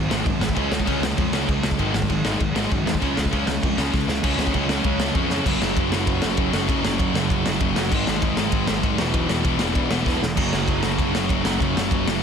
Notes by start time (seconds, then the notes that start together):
Already playing: G#2 D#3 G#3
0.09 G#1 G#2 D#3 G#3, snare
0.25 F#2 G#2 D#3, kick, crash
0.40 G#1 G#2 D#3, snare
0.49 kick
0.55 C#2 C#3 G#3 C#4, kick, crash
0.70 C#2 C#3 G#3, snare
0.80 kick
0.85 C#2 C#3 G#3 C#4, kick, crash
1.01 C#2 C#3 G#3, snare
1.17 F2 C#3 G#3, kick, crash
1.32 C#2 C#3 G#3 C#4, snare
1.48 C#2 C#3 G#3, kick, crash
1.62 C#2 C#3 G#3, snare
1.71 kick
1.79 G#1 G#2 D#3 G#3, kick, crash
1.93 G#1 G#2 D#3, snare
2.02 kick
2.09 G#1 G#2 D#3, kick, crash
2.24 G#1 G#2 D#3 G#3, snare
2.40 G#1 G#2 D#3, kick, crash
2.54 G#1 G#2 D#3 G#3, snare
2.70 F#2 G#2 D#3, kick, crash
2.86 D#2 G#2 D#3, snare
2.95 kick
3.00 C#2 C#3 G#3 C#4, kick, crash
3.17 C#2 C#3 G#3, snare
3.25 kick
3.31 C#2 C#3 G#3 C#4, kick, crash
3.47 C#2 C#3 G#3, snare
3.63 F2 C#3 G#3, kick, crash
3.77 C#2 C#3 G#3 C#4, snare
3.93 C#2 C#3 G#3, kick, snare
4.08 C#2 C#3 G#3, snare
4.23 C#2 C#3 G#3 C#4, kick, crash
4.38 C#2, snare
4.47 kick
4.54 C#2 C#3 G#3 C#4, kick, crash
4.69 C#3 G#3 C#4, snare
4.84 C#2 C#3 G#3 C#4, kick, crash
5.00 snare
5.15 F2 C#3 G#3 C#4, kick, crash
5.30 C#3 G#3 C#4, snare
5.45 F#1 F#2 C#3 F#3, kick, crash
5.61 F#1, snare
5.77 F#1, kick, ride
5.91 F#1 F#2 C#3 F#3, snare
6.07 F#1, kick, ride
6.22 F#1, snare
6.36 F#1 F#2 C#3 F#3, kick, ride
6.53 F#1 F#2 C#3 F#3, snare
6.68 F#1 F#2 C#3 F#3, kick, ride
6.83 F#1, snare
6.99 F#1, kick, ride
7.14 F#1 F#2 C#3 F#3, snare
7.30 F#1, kick, ride
7.46 F#1, snare
7.59 F#1 F#2 C#3 F#3, kick, ride
7.76 F#1 F#2 C#3 F#3, snare
7.90 G#1 G#2 D#3 G#3, kick, crash
8.07 G#1, snare
8.22 G#1, kick, ride
8.36 G#1 G#2 D#3 G#3, snare
8.52 G#1, kick, ride
8.67 G#1, snare
8.82 G#1 G#2 D#3 G#3, kick, ride
8.98 E1 E2 B2 E3, snare
9.14 E1, kick, ride
9.29 E1, snare
9.44 E1 E2 B2 E3, kick, ride
9.59 E1, snare
9.75 E1, kick, ride
9.90 E1 E2 B2 E3, snare
10.05 E1 E2 B2 E3, kick, snare
10.21 E1, snare
10.37 F#1 F#2 C#3 F#3, kick, crash
10.52 F#1, snare
10.68 F#1, kick, ride
10.82 F#1 F#2 C#3 F#3, snare
10.99 F#1, kick, ride
11.14 F#1, snare
11.28 F#1 F#2 C#3 F#3, kick, ride
11.44 F#1 F#2 C#3 F#3, snare
11.59 F#1 F#2 C#3 F#3, kick, ride
11.76 F#1, snare
11.91 F#1, kick, ride
12.05 F#1 F#2 C#3 F#3, snare